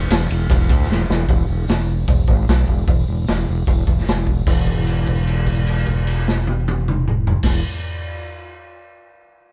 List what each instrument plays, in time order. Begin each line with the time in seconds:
0.10 fingered electric bass E1, snare, ride
0.30 fingered electric bass E1, ride
0.50 fingered electric bass E1, kick, ride
0.69 fingered electric bass D2, kick, ride
0.82 snare
0.90 fingered electric bass E1, snare
1.09 fingered electric bass E1, snare
1.29 fingered electric bass E1, kick, open hi-hat
1.49 fingered electric bass E1
1.68 fingered electric bass E1, snare, open hi-hat
2.08 fingered electric bass E1, kick, open hi-hat
2.28 fingered electric bass G#1, kick
2.48 fingered electric bass B1, snare, open hi-hat
2.59 snare
2.68 fingered electric bass E1, kick
2.87 fingered electric bass E1, kick, open hi-hat
3.08 fingered electric bass E1
3.27 fingered electric bass E1, snare, open hi-hat
3.49 fingered electric bass E1
3.67 fingered electric bass E1, kick, open hi-hat
3.87 fingered electric bass E1, kick
3.98 snare
4.07 fingered electric bass E1, snare, open hi-hat
4.27 kick
4.47 fingered electric bass E1, kick, crash
4.67 kick, crash
4.87 crash
5.07 kick, crash
5.27 crash
5.46 kick, crash
5.67 crash
5.86 kick, crash
6.07 crash
6.28 snare
6.47 high tom
6.68 high tom
6.88 mid tom
7.08 mid tom
7.27 floor tom
7.43 fingered electric bass E1, kick, snare, crash